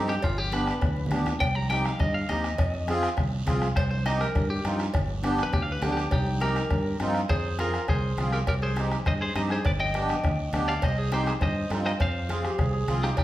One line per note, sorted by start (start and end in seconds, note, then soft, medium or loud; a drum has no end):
0.00 0.17 G2 medium
0.00 0.14 C4 medium
0.00 0.15 D#4 medium
0.00 0.15 G4 medium
0.08 0.23 G4 medium
0.08 bombo rim medium
0.08 short guiro medium
0.22 0.71 G1 loud
0.22 0.38 F4 medium
0.22 bombo low medium
0.22 bombo rim medium
0.22 cowbell loud
0.22 high conga soft
0.22 long guiro medium
0.38 0.52 G4 medium
0.38 high conga medium
0.52 0.73 B3 medium
0.52 0.74 D4 medium
0.52 0.74 G4 medium
0.52 1.10 B4 medium
0.52 bombo rim medium
0.52 cowbell medium
0.52 high conga medium
0.52 short guiro medium
0.67 bombo rim medium
0.67 short guiro medium
0.81 1.06 D2 medium
0.81 bombo low medium
0.81 bombo rim medium
0.81 cowbell medium
0.81 high conga soft
0.81 low conga medium
0.81 long guiro medium
0.96 high conga medium
1.06 low conga loud
1.11 1.35 D2 medium
1.11 1.32 B3 medium
1.11 1.32 D4 medium
1.11 1.32 G4 medium
1.11 bombo rim medium
1.11 cowbell medium
1.11 short guiro medium
1.16 low conga medium
1.26 bombo rim medium
1.26 low conga loud
1.26 short guiro medium
1.40 1.88 C2 medium
1.40 1.55 G5 medium
1.40 bombo low medium
1.40 bombo rim medium
1.40 cowbell loud
1.40 high conga soft
1.40 long guiro medium
1.55 1.69 A#5 medium
1.55 high conga medium
1.69 1.91 C4 medium
1.69 1.91 D#4 medium
1.69 1.91 G4 medium
1.69 1.85 G5 medium
1.69 bombo rim medium
1.69 cowbell medium
1.69 high conga medium
1.69 short guiro medium
1.85 1.99 F5 medium
1.85 bombo rim medium
1.85 high conga medium
1.85 short guiro medium
1.99 2.24 G2 medium
1.99 2.14 D#5 medium
1.99 bombo low medium
1.99 bombo rim medium
1.99 cowbell medium
1.99 high conga soft
1.99 low conga medium
1.99 long guiro medium
2.14 2.29 F5 medium
2.29 2.53 D#2 medium
2.29 2.50 C4 medium
2.29 2.50 D#4 medium
2.29 2.50 G4 medium
2.29 2.86 D#5 medium
2.29 bombo rim medium
2.29 cowbell medium
2.29 high conga medium
2.29 short guiro medium
2.44 bombo rim medium
2.44 short guiro medium
2.58 3.06 F2 medium
2.58 bombo low medium
2.58 bombo rim medium
2.58 cowbell loud
2.58 long guiro medium
2.74 high conga medium
2.88 3.09 C4 medium
2.88 3.09 F4 medium
2.88 3.09 G#4 loud
2.88 bombo rim medium
2.88 cowbell medium
2.88 high conga medium
2.88 short guiro medium
3.03 bombo rim medium
3.03 short guiro medium
3.17 3.41 C2 medium
3.17 bombo low medium
3.17 bombo rim medium
3.17 cowbell medium
3.17 high conga soft
3.17 low conga medium
3.17 long guiro medium
3.46 3.71 C2 medium
3.46 3.67 C4 medium
3.46 3.68 F4 medium
3.46 3.68 G#4 medium
3.46 bombo low medium
3.46 bombo rim medium
3.46 cowbell medium
3.46 high conga medium
3.46 low conga medium
3.46 short guiro medium
3.62 bombo rim medium
3.62 short guiro medium
3.76 4.24 C2 medium
3.76 3.89 C5 loud
3.76 bombo low medium
3.76 bombo rim medium
3.76 cowbell loud
3.76 long guiro medium
3.91 4.05 C5 medium
3.91 high conga medium
4.06 4.27 C4 medium
4.06 4.27 D#4 medium
4.06 4.27 G4 medium
4.06 4.21 D#5 loud
4.06 bombo rim medium
4.06 cowbell medium
4.06 high conga medium
4.06 short guiro medium
4.20 4.49 A#4 medium
4.20 bombo rim medium
4.20 high conga medium
4.20 short guiro medium
4.35 4.59 G2 medium
4.35 bombo low medium
4.35 bombo rim medium
4.35 cowbell medium
4.35 high conga soft
4.35 low conga medium
4.35 long guiro medium
4.50 4.79 G4 loud
4.64 4.88 G2 loud
4.64 4.85 C4 medium
4.64 4.86 D#4 medium
4.64 4.86 F4 medium
4.64 bombo rim medium
4.64 cowbell medium
4.64 high conga medium
4.64 short guiro medium
4.79 bombo rim medium
4.79 short guiro medium
4.94 5.41 G1 medium
4.94 bombo low medium
4.94 bombo rim medium
4.94 cowbell loud
4.94 high conga soft
4.94 low conga medium
5.08 high conga medium
5.23 5.44 B3 medium
5.23 5.44 D4 medium
5.23 5.44 G4 loud
5.23 bombo rim medium
5.23 cowbell medium
5.23 high conga medium
5.23 short guiro medium
5.38 bombo rim medium
5.38 high conga medium
5.38 short guiro medium
5.43 5.53 B4 medium
5.53 5.77 D2 medium
5.53 5.63 G4 loud
5.53 bombo low medium
5.53 bombo rim medium
5.53 cowbell medium
5.53 high conga soft
5.53 low conga medium
5.53 long guiro medium
5.62 5.72 F5 medium
5.72 5.82 B4 medium
5.82 6.06 D2 medium
5.82 6.03 B3 medium
5.82 6.03 D4 medium
5.82 5.91 G4 medium
5.82 6.04 G4 medium
5.82 bombo rim medium
5.82 cowbell medium
5.82 high conga medium
5.82 low conga medium
5.82 low timbale medium
5.82 short guiro medium
5.92 6.11 G4 loud
5.97 bombo rim medium
5.97 short guiro medium
6.11 6.59 C2 loud
6.11 6.40 D#4 medium
6.11 6.40 G4 medium
6.11 bombo low medium
6.11 bombo rim medium
6.11 cowbell loud
6.11 high conga soft
6.11 long guiro medium
6.26 high conga medium
6.41 6.62 C4 medium
6.41 6.62 D#4 medium
6.41 6.62 G4 medium
6.41 6.97 G4 medium
6.41 6.96 A#4 loud
6.41 bombo rim medium
6.41 cowbell medium
6.41 high conga medium
6.41 short guiro medium
6.56 bombo rim medium
6.56 high conga medium
6.56 short guiro medium
6.70 6.94 G2 medium
6.70 bombo low medium
6.70 bombo rim medium
6.70 cowbell medium
6.70 high conga soft
6.70 low conga medium
6.70 long guiro medium
7.00 7.24 G2 medium
7.00 7.21 C4 medium
7.00 7.21 D#4 medium
7.00 7.21 F4 loud
7.00 bombo rim medium
7.00 cowbell medium
7.00 high conga medium
7.00 short guiro medium
7.14 bombo rim medium
7.14 short guiro medium
7.29 7.77 F2 medium
7.29 7.57 G#4 medium
7.29 7.60 C5 medium
7.29 bombo low medium
7.29 bombo rim medium
7.29 cowbell loud
7.29 high conga soft
7.29 low conga medium
7.29 long guiro medium
7.59 7.80 C4 medium
7.59 7.80 F4 medium
7.59 7.87 F4 medium
7.59 7.80 G#4 medium
7.59 7.87 A#4 medium
7.59 bombo rim medium
7.59 cowbell medium
7.59 high conga medium
7.59 short guiro medium
7.74 bombo rim medium
7.74 short guiro medium
7.88 8.12 C2 medium
7.88 8.30 G#4 medium
7.88 8.30 C5 loud
7.88 bombo low medium
7.88 bombo rim medium
7.88 cowbell medium
7.88 high conga soft
7.88 low conga medium
7.88 long guiro medium
8.18 8.41 C2 loud
8.18 8.39 C4 medium
8.18 8.39 F4 medium
8.18 8.39 G#4 medium
8.18 bombo rim medium
8.18 cowbell medium
8.18 high conga medium
8.18 low conga medium
8.18 short guiro medium
8.32 8.38 G4 medium
8.32 8.38 A#4 medium
8.32 bombo rim medium
8.32 short guiro medium
8.47 8.94 C2 loud
8.47 8.53 G4 medium
8.47 8.53 A#4 medium
8.47 bombo low medium
8.47 bombo rim medium
8.47 cowbell loud
8.62 8.90 G#4 medium
8.62 8.90 C5 medium
8.62 high conga medium
8.76 8.97 C4 medium
8.76 8.98 D#4 medium
8.76 8.98 G4 medium
8.76 bombo rim medium
8.76 cowbell medium
8.76 high conga medium
8.76 short guiro medium
8.91 bombo rim medium
8.91 high conga medium
8.91 short guiro medium
9.06 9.30 G2 medium
9.06 9.12 C5 medium
9.06 9.12 D#5 medium
9.06 bombo low medium
9.06 bombo rim medium
9.06 cowbell medium
9.06 high conga soft
9.06 low conga medium
9.06 long guiro medium
9.21 9.35 G#4 medium
9.21 9.34 C5 medium
9.35 9.59 G2 medium
9.35 9.56 C4 medium
9.35 9.56 D#4 medium
9.35 9.57 G4 medium
9.35 9.41 C5 medium
9.35 9.41 D#5 medium
9.35 bombo rim medium
9.35 cowbell medium
9.35 high conga medium
9.35 short guiro medium
9.50 9.65 G#4 medium
9.50 9.65 C5 medium
9.50 bombo rim medium
9.50 short guiro medium
9.65 10.12 G1 loud
9.65 9.71 B4 medium
9.65 9.71 D5 medium
9.65 bombo low medium
9.65 bombo rim medium
9.65 cowbell loud
9.65 high conga soft
9.65 low conga medium
9.65 long guiro medium
9.80 10.64 D#5 medium
9.80 10.68 G5 loud
9.80 high conga medium
9.94 10.15 B3 medium
9.94 10.15 D4 medium
9.94 10.15 G4 medium
9.94 bombo rim medium
9.94 cowbell medium
9.94 high conga medium
9.94 short guiro medium
10.09 bombo rim medium
10.09 high conga medium
10.09 short guiro medium
10.24 10.48 D2 medium
10.24 bombo low medium
10.24 bombo rim medium
10.24 cowbell medium
10.24 high conga soft
10.24 low conga medium
10.53 10.77 D2 loud
10.53 10.73 B3 medium
10.53 10.74 D4 medium
10.53 10.74 G4 medium
10.53 bombo rim medium
10.53 cowbell medium
10.53 high conga medium
10.53 low conga medium
10.53 short guiro medium
10.68 10.82 D5 medium
10.68 10.83 F5 medium
10.68 bombo rim medium
10.68 short guiro medium
10.82 11.30 C2 loud
10.82 10.97 C5 medium
10.82 10.99 D#5 loud
10.82 bombo low medium
10.82 bombo rim medium
10.82 cowbell loud
10.82 high conga soft
10.82 long guiro medium
10.98 11.12 G#4 medium
10.98 11.12 C5 medium
11.12 11.32 C4 medium
11.12 11.33 D#4 medium
11.12 11.33 G4 medium
11.12 11.26 G4 medium
11.12 11.27 C5 loud
11.12 bombo rim medium
11.12 cowbell medium
11.12 high conga medium
11.12 short guiro medium
11.26 11.33 G#4 medium
11.26 11.33 C5 medium
11.26 bombo rim medium
11.26 high conga medium
11.26 short guiro medium
11.41 11.65 G2 medium
11.41 11.69 C5 medium
11.41 11.70 D#5 medium
11.41 bombo low medium
11.41 bombo rim medium
11.41 cowbell medium
11.41 high conga soft
11.41 low conga medium
11.41 long guiro medium
11.70 11.94 G2 medium
11.70 11.91 C4 medium
11.70 11.92 D#4 medium
11.70 11.92 F4 medium
11.70 bombo rim medium
11.70 cowbell medium
11.70 high conga medium
11.70 low timbale medium
11.70 short guiro medium
11.86 11.91 C5 medium
11.86 11.91 D#5 medium
11.86 bombo rim medium
11.86 short guiro medium
12.00 12.47 F2 loud
12.00 12.85 C5 medium
12.00 12.85 F5 loud
12.00 bombo low medium
12.00 bombo rim medium
12.00 cowbell loud
12.00 long guiro medium
12.29 12.50 C4 medium
12.29 12.45 F4 medium
12.29 12.50 F4 medium
12.29 12.51 G#4 medium
12.29 bombo rim medium
12.29 cowbell medium
12.29 high conga medium
12.29 short guiro medium
12.44 12.60 G4 medium
12.44 bombo rim medium
12.44 high conga medium
12.44 short guiro medium
12.58 12.82 C2 medium
12.58 12.72 G#4 medium
12.58 bombo low medium
12.58 bombo rim medium
12.58 cowbell medium
12.58 high conga soft
12.58 low conga medium
12.58 long guiro medium
12.73 12.94 G#4 medium
12.88 13.12 C2 medium
12.88 13.09 C4 medium
12.88 13.09 F4 medium
12.88 13.09 G#4 medium
12.88 bombo rim medium
12.88 cowbell medium
12.88 high conga medium
12.88 low conga medium
12.88 short guiro medium
13.03 13.17 D#4 medium
13.03 13.17 G4 medium
13.03 bombo rim medium
13.03 short guiro medium
13.17 13.24 C2 medium
13.17 13.24 D#4 medium
13.17 13.24 G4 medium
13.17 bombo low medium
13.17 bombo rim medium
13.17 cowbell loud